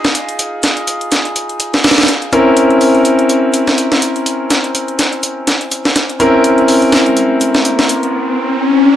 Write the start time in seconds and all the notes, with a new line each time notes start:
Already playing: D#4 F4 G#4
0.04 snare, closed hi-hat
0.15 closed hi-hat
0.29 closed hi-hat
0.39 closed hi-hat
0.63 snare, closed hi-hat
0.77 closed hi-hat
0.87 closed hi-hat
1.01 closed hi-hat
1.12 snare, closed hi-hat
1.25 closed hi-hat
1.36 closed hi-hat
1.49 closed hi-hat
1.60 closed hi-hat
1.74 snare, closed hi-hat
1.84 snare, closed hi-hat, open hi-hat
1.91 snare, open hi-hat
1.98 snare, closed hi-hat, open hi-hat
2.03 snare, open hi-hat
2.08 snare, closed hi-hat
2.22 closed hi-hat
2.33 C4 C#4 E4 A#4, closed hi-hat
2.57 closed hi-hat
2.70 closed hi-hat
2.81 closed hi-hat, open hi-hat
2.95 closed hi-hat
3.05 closed hi-hat
3.19 closed hi-hat
3.29 closed hi-hat
3.54 closed hi-hat
3.67 snare, closed hi-hat
3.78 closed hi-hat
3.92 snare, closed hi-hat
4.02 closed hi-hat
4.16 closed hi-hat
4.26 closed hi-hat
4.50 snare, closed hi-hat
4.64 closed hi-hat
4.75 closed hi-hat
4.88 closed hi-hat
4.99 snare, closed hi-hat
5.13 closed hi-hat
5.23 closed hi-hat
5.47 snare, closed hi-hat
5.61 closed hi-hat
5.71 closed hi-hat
5.85 snare, closed hi-hat
5.96 snare, closed hi-hat
6.10 closed hi-hat
6.20 C4 C#4 E4 A#4, closed hi-hat, riser
6.44 closed hi-hat
6.58 closed hi-hat
6.68 closed hi-hat, open hi-hat
6.82 closed hi-hat
6.92 snare, closed hi-hat, open hi-hat
7.06 closed hi-hat
7.17 closed hi-hat
7.41 closed hi-hat
7.54 snare, closed hi-hat
7.65 closed hi-hat
7.79 snare, closed hi-hat
7.89 closed hi-hat
8.03 closed hi-hat